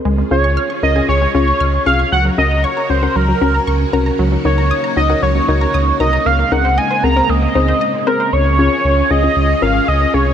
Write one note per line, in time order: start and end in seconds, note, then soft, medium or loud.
0.05 0.23 C#2 loud
0.05 2.10 C#3 medium
0.05 0.14 G#3 loud
0.05 4.15 C#4 medium
0.05 2.10 F4 medium
0.05 2.10 G#4 medium
0.18 0.27 G#3 medium
0.31 0.58 C#2 loud
0.31 0.53 C#4 medium
0.31 0.53 F4 medium
0.31 0.40 F4 medium
0.31 0.53 G#4 medium
0.31 0.79 C#5 medium
0.44 0.53 C#6 medium
0.57 0.66 F6 loud
0.70 0.79 C#6 medium
0.83 1.01 C#2 loud
0.83 0.94 C#4 medium
0.83 0.94 F4 medium
0.83 0.94 A#4 medium
0.83 1.07 D#5 medium
0.96 1.18 C#4 medium
0.96 1.18 F4 medium
0.96 1.18 G#4 medium
0.96 1.05 G#5 medium
1.09 1.27 C#2 loud
1.09 1.17 G#3 medium
1.09 1.33 C#5 loud
1.22 1.30 G#3 medium
1.35 1.53 C#2 loud
1.35 1.57 C#4 medium
1.35 1.57 F4 medium
1.35 1.43 F4 medium
1.35 1.57 G#4 medium
1.35 1.83 C#5 loud
1.48 1.56 C#6 medium
1.60 1.79 C#2 medium
1.60 1.69 F6 loud
1.86 2.04 C2 medium
1.86 2.08 C#4 medium
1.86 2.08 F4 medium
1.86 2.08 G#4 medium
1.86 2.10 F5 loud
1.86 1.95 C#6 medium
1.99 2.08 C#6 medium
2.12 2.30 C#2 loud
2.12 8.29 C#3 medium
2.12 2.21 F#3 loud
2.12 6.22 F#4 medium
2.12 4.17 A#4 medium
2.12 2.24 F#5 loud
2.25 2.34 F#3 medium
2.38 2.65 C#2 loud
2.38 2.60 C#4 medium
2.38 2.47 C#4 medium
2.38 2.60 F#4 medium
2.38 2.60 A#4 medium
2.38 2.65 D#5 loud
2.51 2.60 A#5 medium
2.64 2.91 C#5 loud
2.64 2.73 C#6 loud
2.77 2.86 A#5 medium
2.90 3.08 C#2 loud
2.90 3.01 C#4 medium
2.90 3.01 F#4 medium
2.90 3.17 C5 loud
2.90 3.01 C#5 medium
3.03 3.25 C#4 medium
3.03 3.25 F#4 medium
3.03 3.25 A#4 medium
3.03 3.12 F#5 medium
3.16 3.34 C#2 loud
3.16 3.25 F#3 medium
3.16 3.93 A#4 medium
3.29 3.37 F#3 medium
3.41 3.60 C#2 loud
3.41 3.63 C#4 medium
3.41 3.50 C#4 medium
3.41 3.63 F#4 medium
3.41 3.63 A#4 medium
3.54 3.63 A#5 medium
3.67 3.85 C#2 loud
3.67 3.76 C#6 loud
3.93 4.11 C2 loud
3.93 4.15 C#4 medium
3.93 4.15 F#4 medium
3.93 4.15 A#4 loud
3.93 4.02 A#5 medium
4.06 4.15 A#5 medium
4.19 4.37 C#2 loud
4.19 4.28 F#3 loud
4.19 6.24 A#3 medium
4.19 6.24 D#4 medium
4.32 4.41 F#3 medium
4.45 4.72 C#2 loud
4.45 4.67 D#4 medium
4.45 4.54 D#4 medium
4.45 4.67 F#4 medium
4.45 4.67 A#4 medium
4.45 4.93 C#5 medium
4.58 4.67 A#5 medium
4.71 4.80 D#6 loud
4.84 4.93 A#5 medium
4.97 5.15 C#2 loud
4.97 5.08 D#4 medium
4.97 5.08 F#4 medium
4.97 5.08 C#5 medium
4.97 5.21 D#5 medium
5.10 5.32 D#4 medium
5.10 5.32 F#4 medium
5.10 5.32 A#4 medium
5.10 5.18 F#5 medium
5.22 5.41 C#2 loud
5.22 5.31 F#3 medium
5.22 5.47 C#5 medium
5.35 5.44 F#3 medium
5.48 5.66 C#2 loud
5.48 5.70 D#4 medium
5.48 5.57 D#4 medium
5.48 5.70 F#4 medium
5.48 5.70 A#4 medium
5.48 5.97 C#5 medium
5.61 5.70 A#5 medium
5.74 5.92 C#2 loud
5.74 5.83 D#6 loud
6.00 6.18 C2 medium
6.00 6.22 D#4 medium
6.00 6.22 F#4 medium
6.00 6.22 A#4 medium
6.00 6.28 D#5 medium
6.00 6.09 A#5 medium
6.13 6.22 A#5 medium
6.26 6.44 C#2 loud
6.26 8.31 G#3 medium
6.26 6.35 A#3 loud
6.26 8.31 A#3 medium
6.26 8.31 C4 medium
6.26 6.53 F5 loud
6.39 6.48 A#3 medium
6.52 6.79 C#2 loud
6.52 6.74 C4 medium
6.52 6.61 D#4 medium
6.52 6.74 G#4 medium
6.52 6.74 A#4 medium
6.52 6.79 F#5 loud
6.65 6.74 C5 medium
6.78 6.87 D#5 loud
6.78 7.05 G#5 loud
6.91 6.99 C5 medium
7.03 7.22 C#2 loud
7.03 7.15 C4 medium
7.03 7.15 G#4 medium
7.03 7.15 A#4 medium
7.03 7.31 A#5 loud
7.16 7.38 C4 medium
7.16 7.38 G#4 medium
7.16 7.25 A#4 medium
7.16 7.38 C5 medium
7.29 7.48 C#2 loud
7.29 7.38 A#3 medium
7.29 8.06 D#5 loud
7.42 7.51 A#3 medium
7.55 7.73 C#2 loud
7.55 7.77 C4 medium
7.55 7.64 D#4 medium
7.55 7.77 G#4 medium
7.55 7.77 C5 medium
7.68 7.77 C5 medium
7.81 7.90 D#5 loud
8.07 8.29 C4 medium
8.07 8.29 G#4 medium
8.07 8.29 A#4 loud
8.07 8.34 A#4 medium
8.07 8.16 C5 medium
8.20 8.29 C5 medium
8.33 8.69 C#2 loud
8.33 10.34 C#3 medium
8.33 10.34 C#4 medium
8.33 10.34 F4 medium
8.33 10.34 G#4 medium
8.33 8.58 C#5 loud
8.59 8.81 C#4 medium
8.59 8.81 F4 medium
8.59 8.81 G#4 medium
8.59 9.12 C#5 loud
8.85 9.03 C#2 loud
9.10 9.29 C#2 loud
9.10 9.21 C#4 medium
9.10 9.21 F4 medium
9.10 9.21 G#4 medium
9.10 9.64 D#5 loud
9.23 9.45 C#4 medium
9.23 9.45 F4 medium
9.23 9.45 G#4 medium
9.36 9.54 C#2 loud
9.62 9.80 G#1 loud
9.62 9.84 C#4 medium
9.62 9.84 F4 medium
9.62 9.84 A#4 medium
9.62 9.90 F5 loud
9.88 10.06 C#2 loud
9.88 10.15 D#5 loud
10.14 10.32 C2 medium
10.14 10.34 C#4 medium
10.14 10.34 F4 medium
10.14 10.34 G#4 medium
10.14 10.34 C#5 loud